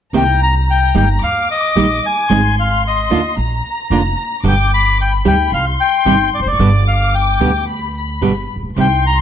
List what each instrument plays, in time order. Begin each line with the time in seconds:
0.13 upright bass C2, nylon-string guitar C3 D#3 A#3 C4 G4, bandoneon G5, violin section A#5
0.43 bandoneon A#5
0.70 bandoneon G5
0.95 upright bass G1, nylon-string guitar D#3 G3 A#3 D#4 G4, bandoneon G5
1.22 upright bass D#2, bandoneon F5, violin section D6
1.51 bandoneon D#5
1.76 upright bass A#1, nylon-string guitar D#3 G3 A#3 D#4 G4
2.06 bandoneon G#5
2.30 upright bass G#1, nylon-string guitar D#3 G#3 C4 D#4 G#4, violin section C6
2.60 bandoneon F5
2.87 bandoneon D#5
3.10 upright bass D#2, nylon-string guitar D3 A#3 D4 F4
3.37 upright bass A#1, violin section A#5
3.90 upright bass F1, nylon-string guitar D3 A#3 D4 F4
4.44 upright bass G1, nylon-string guitar B2 D3 G3 B3 G4, violin section D6
4.48 bandoneon G5
4.74 bandoneon B5
5.00 bandoneon G5, violin section B5
5.25 upright bass D2, nylon-string guitar C3 D#3 G3 C4 G4, bandoneon G5
5.52 upright bass C2, bandoneon F5, violin section C6
5.81 bandoneon G5
6.05 upright bass G1, nylon-string guitar C3 D#3 G3 C4 G4
6.35 bandoneon D5
6.39 upright bass E1, bandoneon C5
6.46 upright bass F1, bandoneon D5
6.52 upright bass F#1, violin section C#6
6.59 upright bass G1, nylon-string guitar B2 D3 G3 B3 G4, violin section D6
6.88 bandoneon F5
7.15 bandoneon G5
7.40 upright bass D2, nylon-string guitar B2 D3 G3 B3 G4
7.68 violin section B5
7.96 violin section B5
8.21 upright bass G1, nylon-string guitar B2 D3 G3 B3 G4
8.56 upright bass A1
8.63 upright bass A#1
8.70 upright bass B1
8.76 upright bass C2, nylon-string guitar C3 D#3 G3 C4 G4, violin section C6
8.80 bandoneon G5
9.07 bandoneon A#5